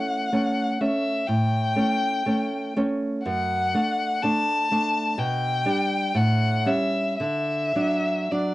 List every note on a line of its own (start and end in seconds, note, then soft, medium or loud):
0.00 0.29 A3 soft
0.00 0.29 C#4 soft
0.00 0.82 F#5 medium
0.32 0.77 A3 soft
0.32 0.77 C#4 soft
0.81 1.24 A3 soft
0.81 1.25 C#4 soft
0.81 1.29 E5 soft
1.27 1.75 A2 soft
1.27 2.76 G5 medium
1.76 2.22 A3 soft
1.76 2.22 C#4 soft
2.26 2.72 A3 soft
2.26 2.73 C#4 soft
2.76 3.22 A3 soft
2.76 3.22 C#4 soft
3.25 3.73 F#2 soft
3.25 4.23 F#5 medium
3.74 4.19 A3 soft
3.74 4.19 D4 soft
4.22 4.67 A3 soft
4.22 4.68 D4 soft
4.22 5.20 A5 medium
4.71 5.15 A3 soft
4.71 5.15 D4 soft
5.18 5.65 B2 soft
5.18 6.18 G5 medium
5.66 6.12 G3 soft
5.66 6.12 D4 soft
6.15 6.65 A2 soft
6.15 6.69 F#5 medium
6.66 7.16 G3 soft
6.66 7.16 C#4 soft
6.66 7.20 E5 medium
7.20 7.74 D3 soft
7.20 8.33 E5 medium
7.75 8.27 F#3 soft
7.75 8.28 D4 soft
8.31 8.54 F#3 soft
8.31 8.54 D4 soft
8.31 8.54 D5 soft